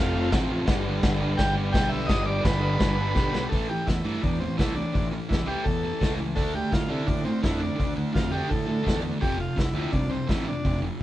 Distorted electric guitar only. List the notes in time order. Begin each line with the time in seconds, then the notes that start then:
Already playing: F2 C3
0.00 F3
0.14 F2 C3 F3
0.33 F2 C3 F3
0.51 F2 C3 F3
0.68 G2 D3 G3
0.87 G2 D3 G3
1.04 G2 D3 G3
1.21 G2 D3 G3
1.39 G2 D3 G3
1.55 G2 D3 G3
1.73 G2 D3 G3
1.91 G2 D3 G3
2.08 G2 D3 G3
2.26 G2 D3 G3
2.43 G2 D3 G3
2.61 G2 D3 G3
2.79 G2 D3 G3
2.96 G2 D3 G3
3.14 G2 D3 G3
3.32 G2 D3 G3
3.52 A2 E3 A3
3.69 A2 E3
3.87 A2 E3
4.04 A2 E3 A3
4.22 A2 E3
4.40 A2 E3
4.58 A2 E3 A3
4.76 A2 E3
4.93 A2 E3
5.12 A2 E3
5.29 A2 E3
5.46 A2 E3 A3
5.65 A2 E3
5.84 A2 E3
6.00 A2 E3 A3
6.19 A2 E3
6.36 D3 A3 D4
6.53 D3 A3
6.71 D3 A3
6.88 D3 A3 D4
7.07 D3 A3
7.25 D3 A3
7.43 D3 A3 D4
7.59 D3 A3
7.76 D3 A3
7.96 D3 A3
8.12 D3 A3
8.31 D3 A3 D4
8.48 D3 A3
8.66 D3 A3
8.83 D3 A3 D4
9.02 D3 A3
9.20 F2 C3 F3
9.37 F2 C3
9.56 F2 C3
9.74 F2 C3 F3
9.93 F2 C3
10.10 F2 C3
10.28 F2 C3 F3
10.46 F2 C3
10.65 F2 C3
10.82 F2 C3